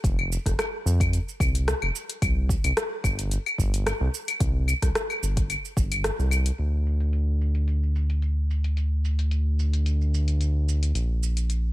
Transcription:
0.04 F1, kick, closed hi-hat, shaker
0.19 claves
0.32 shaker
0.46 F1, kick, cross-stick, closed hi-hat, shaker
0.59 cross-stick, closed hi-hat, claves, shaker
0.86 F2, shaker
1.00 kick, closed hi-hat, claves, shaker
1.13 closed hi-hat, shaker
1.29 shaker
1.40 C2, kick, claves, shaker
1.55 closed hi-hat, shaker
1.68 cross-stick, closed hi-hat, shaker
1.82 F1, claves
1.96 shaker
2.10 closed hi-hat, shaker
2.22 C2, kick, closed hi-hat, claves, shaker
2.49 kick, shaker
2.64 C2, closed hi-hat, claves, shaker
2.77 cross-stick, closed hi-hat, shaker
3.04 G1, kick, claves, shaker
3.19 closed hi-hat, shaker
3.31 closed hi-hat, shaker
3.46 claves, shaker
3.58 G1, kick, shaker
3.74 closed hi-hat, shaker
3.87 cross-stick, closed hi-hat, claves, shaker
4.01 C2
4.14 shaker
4.28 closed hi-hat, claves, shaker
4.40 C2, kick, closed hi-hat, shaker
4.68 claves, shaker
4.82 C2, kick, cross-stick, closed hi-hat, shaker
4.95 cross-stick, closed hi-hat, shaker
5.10 claves, shaker
5.23 G1, shaker
5.37 kick, closed hi-hat, shaker
5.50 closed hi-hat, claves, shaker
5.65 shaker
5.77 G1, kick, shaker
5.92 closed hi-hat, claves, shaker
6.04 cross-stick, closed hi-hat, shaker
6.19 C2, shaker
6.31 claves, shaker
6.46 closed hi-hat, shaker
6.58 D2, closed hi-hat, shaker
6.87 shaker
7.00 closed hi-hat, shaker
7.13 closed hi-hat, shaker
7.41 shaker
7.55 closed hi-hat, shaker
7.68 closed hi-hat, shaker
7.83 shaker
7.96 shaker
8.10 closed hi-hat, shaker
8.22 closed hi-hat, shaker
8.51 shaker
8.64 closed hi-hat, shaker
8.77 closed hi-hat, shaker
9.05 shaker
9.19 closed hi-hat, shaker
9.31 closed hi-hat, shaker
9.59 shaker
9.73 closed hi-hat, shaker
9.86 closed hi-hat, shaker
10.01 shaker
10.14 shaker
10.28 closed hi-hat, shaker
10.41 closed hi-hat, shaker
10.69 shaker
10.83 closed hi-hat, shaker
10.95 A#1, closed hi-hat, shaker
11.23 shaker
11.37 closed hi-hat, shaker
11.50 closed hi-hat, shaker

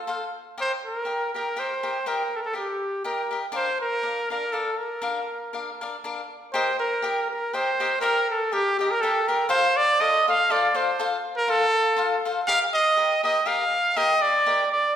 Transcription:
Already playing: A4
0.07 F4 A4 C5 F5
0.58 G4 A#4 C5 D#5 G5
0.86 A#4
1.05 G4 A#4 D#5 G5
1.34 G4 A#4 D#5 G5
1.56 G4 A#4 C5 D#5 G5
1.83 G4 A#4 D#5 G5
2.06 G4 A#4 D#5 G5
2.36 A4 A#4
2.45 A4
2.53 G4 A#4 D#5 G5
3.04 G4 A#4 D#5 G5
3.31 G4 A#4 D#5 G5
3.52 D4 A#4 D5 F5
3.56 C5
3.81 A#4
4.02 D4 A#4 D5 F5
4.30 D4 A#4 D5 F5
4.52 D4 A4 A#4 D5 F5
4.78 A#4
5.02 D4 A#4 D5 F5
5.53 D4 A#4 D5 F5
5.81 D4 A#4 D5 F5
6.04 D4 A#4 D5 F5
6.53 G4 A#4 C5 D#5 G5
6.79 A#4
7.02 G4 A#4 D#5 G5
7.30 A#4
7.53 G4 A#4 C5 D#5 G5
7.80 G4 A#4 D#5 G5
8.01 G4 A#4 D#5 G5
8.30 A4
8.52 G4 A#4 D#5 G5
8.79 G4 A#4 D#5 G5
8.91 A#4
9.01 G4 A4 A#4 D#5 G5
9.28 G4 A#4 D#5 G5
9.49 F4 A4 C5 F5
9.77 D5
9.99 F4 A4 C5 D#5 F5
10.28 F4 A4 C5 F5
10.50 F4 A4 C5 D5 F5
10.74 F4 A4 C5 F5
10.99 F4 A4 C5 F5
11.37 A#4
11.47 F4 A4 C5 F5
11.97 F4 A4 C5 F5
12.25 F4 A4 C5 F5
12.47 G4 A#4 D#5 F5 G5
12.74 D#5
12.96 G4 A#4 D#5 G5
13.23 G4 A#4 D#5 G5
13.46 G4 A#4 D#5 F5 G5
13.96 G4 A#4 D#5 G5
14.22 D5
14.46 G4 A#4 D#5 G5
14.72 D5

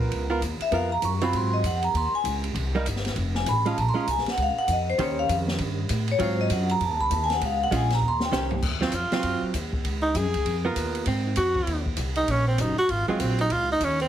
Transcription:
Already playing: A#1 B3 F4 A#4
0.11 C#2, kick, ride
0.30 B3 F4 A#4
0.41 D#2, kick, hi-hat pedal, ride
0.60 E5, muted upright bass stroke, ride
0.71 F2 B3 F4 A#4, kick, ride
0.75 F5
0.92 A#5
1.02 F#2 C#6, kick, hi-hat pedal, ride
1.21 F#3 C4 F4 B5, ride
1.32 G#2, kick, ride
1.36 C6
1.53 D#5
1.63 F2 F#5, kick, hi-hat pedal, ride
1.82 A#5, ride
1.93 D#2 C6, kick, ride
2.12 G#5, muted upright bass stroke
2.24 C#2, kick, hi-hat pedal, ride
2.44 ride
2.54 C2, kick, ride
2.75 G3 A#3 D#4
2.85 G1, kick, hi-hat pedal, ride
2.96 snare
3.05 snare, ride
3.15 F1, kick, ride
3.35 G#5, snare
3.46 A1 B5, kick, hi-hat pedal, ride
3.65 G#3 C#4 F4 A5, ride
3.77 A#1 A#5, kick, ride
3.89 C6
3.94 G#3 C#4 F4, muted upright bass stroke
4.01 A#5
4.07 C2 G#5, kick, hi-hat pedal, ride
4.18 snare
4.26 F#5, snare, ride
4.37 C#2, kick, ride
4.43 F5
4.59 F#5
4.68 F2, kick, hi-hat pedal, ride
4.73 D#5
4.90 C5
4.98 D#2 D#3 C#4 G4 C5, kick, ride
5.02 C#5
5.19 F5
5.28 F2, kick, hi-hat pedal, ride
5.48 snare
5.58 G2, kick, ride
5.89 A2, kick, hi-hat pedal, ride
6.08 C#5, ride
6.19 G#2 F#3 C4 F4, kick, ride
6.23 C5
6.41 D#5
6.50 F#2 F#5, kick, hi-hat pedal, ride
6.69 A#5, ride
6.80 F2 A5, kick, ride
6.90 D#2
6.99 C#2 B5
7.10 D#2 A5, kick, hi-hat pedal, ride
7.24 G#5
7.30 F#5, snare, ride
7.40 C#2, kick, ride
7.45 F5
7.64 F#5
7.71 A#1 G#3 C#4 F4, kick, hi-hat pedal, ride
7.76 G#5
7.90 snare, ride
7.95 A#5
8.01 D#2
8.08 C6
8.20 snare
8.25 G5
8.32 C2 D#3 C#4 G4 C5, snare, hi-hat pedal
8.51 floor tom
8.62 D#2, kick, crash
8.81 F#3 C4 F4, snare
8.92 F2 F4, kick, hi-hat pedal, ride
9.11 F#3 C4 F4, muted upright bass stroke, snare, ride
9.23 F#2, kick, ride
9.42 muted upright bass stroke
9.53 D#2, kick, hi-hat pedal, ride
9.73 kick
9.84 C#2, kick, ride
10.02 D#4
10.14 F#2 G#4, kick, hi-hat pedal, ride
10.24 F2
10.34 C#2, ride
10.45 F2, kick, ride
10.65 B3 F4 A#4
10.75 D#2, kick, hi-hat pedal, ride
10.95 ride
11.06 G#2 C4, kick, ride
11.25 D#4
11.36 F2 F#4, kick, hi-hat pedal, ride
11.55 kick
11.66 D#2, kick, ride
11.86 kick
11.97 C2, kick, hi-hat pedal, ride
12.15 D#4, ride
12.27 A#1 C#4, kick, ride
12.47 C4
12.58 F#1 D#4, kick, hi-hat pedal, ride
12.78 F#4, muted upright bass stroke
12.89 G#1 F4, kick, ride
13.08 F#3 G#3 C4 F4, muted upright bass stroke
13.19 A#1 C4, kick, hi-hat pedal, ride
13.38 D#4, ride
13.49 C#2 F4, kick, ride
13.72 D#4
13.80 D#2, kick, hi-hat pedal, ride
13.84 C#4
14.00 C4, ride

